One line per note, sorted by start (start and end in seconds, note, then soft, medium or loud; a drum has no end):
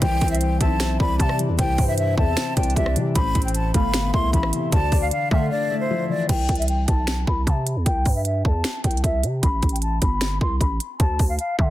0.02 0.21 C2 loud
0.02 1.00 E3 loud
0.02 0.57 C5 loud
0.02 0.29 G5 loud
0.02 kick loud
0.02 closed hi-hat loud
0.21 0.59 C2 loud
0.21 kick loud
0.21 closed hi-hat soft
0.21 open hi-hat medium
0.28 0.40 E5 medium
0.28 closed hi-hat medium
0.35 closed hi-hat medium
0.41 0.59 G5 medium
0.41 closed hi-hat medium
0.60 0.98 B1 loud
0.60 0.98 C4 loud
0.60 0.97 E5 medium
0.60 0.97 A5 medium
0.60 kick medium
0.60 closed hi-hat medium
0.80 1.78 C5 medium
0.80 finger snap medium
0.80 snare loud
0.80 closed hi-hat medium
1.00 1.19 C2 loud
1.00 1.98 C4 medium
1.00 1.55 D5 medium
1.00 1.17 B5 medium
1.00 kick loud
1.19 1.50 C3 loud
1.19 2.17 G3 medium
1.19 1.37 A5 medium
1.19 kick medium
1.19 closed hi-hat medium
1.29 cross-stick medium
1.39 2.37 E3 medium
1.39 closed hi-hat medium
1.49 1.58 E2 loud
1.59 1.78 C2 loud
1.59 2.57 C3 medium
1.59 2.14 C5 loud
1.59 1.86 G5 loud
1.59 kick loud
1.59 closed hi-hat loud
1.78 2.16 G2 loud
1.78 kick loud
1.78 open hi-hat medium
1.88 1.97 E5 medium
1.98 2.16 E5 medium
1.98 closed hi-hat medium
2.18 2.36 E2 loud
2.18 2.55 C4 medium
2.18 2.55 E5 medium
2.18 2.55 A5 medium
2.18 kick medium
2.37 3.15 C5 medium
2.37 finger snap medium
2.37 snare loud
2.37 closed hi-hat medium
2.57 2.76 C2 loud
2.57 3.15 C4 medium
2.57 3.12 D5 medium
2.57 2.74 G5 medium
2.57 kick loud
2.57 closed hi-hat medium
2.63 closed hi-hat medium
2.70 closed hi-hat soft
2.76 2.98 C2 loud
2.76 3.16 G3 medium
2.76 2.94 E5 medium
2.76 kick medium
2.76 closed hi-hat medium
2.86 cross-stick medium
2.96 3.15 C3 loud
2.96 3.16 E3 medium
2.96 closed hi-hat medium
3.15 3.34 A1 loud
3.15 4.14 A2 medium
3.15 3.71 C5 loud
3.15 3.43 B5 loud
3.15 kick loud
3.15 closed hi-hat medium
3.35 3.73 A1 loud
3.35 kick loud
3.35 closed hi-hat soft
3.35 open hi-hat medium
3.42 3.54 G5 medium
3.42 closed hi-hat medium
3.48 closed hi-hat medium
3.54 3.72 A5 medium
3.54 closed hi-hat medium
3.74 4.12 G1 loud
3.74 4.12 A3 loud
3.74 4.11 F5 medium
3.74 4.11 B5 medium
3.74 kick medium
3.74 closed hi-hat medium
3.94 4.73 B3 medium
3.94 finger snap medium
3.94 snare loud
3.94 closed hi-hat medium
4.13 4.33 C2 loud
4.13 4.72 A3 medium
4.13 4.69 E5 medium
4.13 4.31 C6 medium
4.13 kick medium
4.33 4.52 A1 loud
4.33 4.73 E3 loud
4.33 4.51 B5 medium
4.33 kick medium
4.33 closed hi-hat medium
4.43 cross-stick medium
4.53 4.73 C3 medium
4.53 closed hi-hat medium
4.72 4.91 D2 loud
4.72 5.71 D3 medium
4.72 5.28 D5 loud
4.72 5.00 A5 loud
4.72 kick loud
4.72 closed hi-hat loud
4.92 5.11 D2 loud
4.92 kick loud
4.92 open hi-hat medium
5.02 5.11 F5 medium
5.11 5.29 F5 medium
5.11 closed hi-hat medium
5.31 5.50 D3 loud
5.31 5.70 A3 loud
5.31 5.49 E5 medium
5.31 5.68 F5 medium
5.31 kick medium
5.51 6.29 D4 medium
5.51 5.78 D5 medium
5.70 6.30 A3 medium
5.70 6.25 E5 medium
5.80 6.08 C5 medium
5.91 6.30 F3 loud
6.10 6.29 E3 medium
6.10 6.27 D5 medium
6.29 6.48 C2 loud
6.29 6.57 G5 loud
6.29 kick loud
6.29 closed hi-hat medium
6.29 crash medium
6.49 6.87 C2 loud
6.49 kick loud
6.49 closed hi-hat soft
6.49 open hi-hat medium
6.55 6.67 E5 medium
6.55 closed hi-hat medium
6.62 closed hi-hat medium
6.68 6.86 G5 medium
6.68 closed hi-hat medium
6.88 7.26 B1 loud
6.88 7.25 A5 medium
6.88 kick medium
6.88 closed hi-hat medium
7.07 finger snap medium
7.07 snare loud
7.07 closed hi-hat medium
7.27 7.46 C2 loud
7.27 7.45 B5 medium
7.27 kick medium
7.47 7.78 C3 loud
7.47 7.64 A5 medium
7.47 kick medium
7.47 closed hi-hat medium
7.67 closed hi-hat medium
7.76 7.86 E2 loud
7.86 8.05 C2 loud
7.86 8.14 G5 loud
7.86 kick loud
7.86 closed hi-hat medium
8.05 8.43 G2 loud
8.05 kick loud
8.05 open hi-hat medium
8.16 8.24 E5 medium
8.25 8.43 E5 medium
8.25 closed hi-hat medium
8.45 8.64 E2 loud
8.45 8.82 A5 medium
8.45 kick medium
8.64 finger snap medium
8.64 snare loud
8.64 closed hi-hat medium
8.84 9.03 C2 loud
8.84 9.02 G5 medium
8.84 kick medium
8.84 closed hi-hat medium
8.91 closed hi-hat medium
8.97 closed hi-hat soft
9.04 9.25 C2 loud
9.04 9.21 E5 medium
9.04 kick medium
9.04 closed hi-hat medium
9.23 9.42 C3 loud
9.23 closed hi-hat medium
9.43 9.62 A1 loud
9.43 9.71 B5 loud
9.43 kick loud
9.43 closed hi-hat medium
9.62 10.00 A1 loud
9.62 kick loud
9.62 closed hi-hat soft
9.62 open hi-hat medium
9.69 9.81 G5 medium
9.69 closed hi-hat medium
9.76 closed hi-hat medium
9.82 10.00 A5 medium
9.82 closed hi-hat medium
10.02 10.39 G1 loud
10.02 10.39 B5 medium
10.02 kick medium
10.02 closed hi-hat medium
10.21 finger snap medium
10.21 snare loud
10.21 closed hi-hat medium
10.41 10.60 C2 loud
10.41 10.59 C6 medium
10.41 kick medium
10.60 10.79 A1 loud
10.60 10.78 B5 medium
10.60 kick medium
10.60 closed hi-hat medium
10.80 closed hi-hat medium
11.00 11.19 D2 loud
11.00 11.28 A5 loud
11.00 kick loud
11.00 closed hi-hat medium
11.19 11.38 D2 loud
11.19 kick loud
11.19 open hi-hat medium
11.29 11.38 F5 medium
11.39 11.57 F5 medium
11.39 closed hi-hat medium
11.59 11.70 D3 loud
11.59 11.70 E5 medium
11.59 kick medium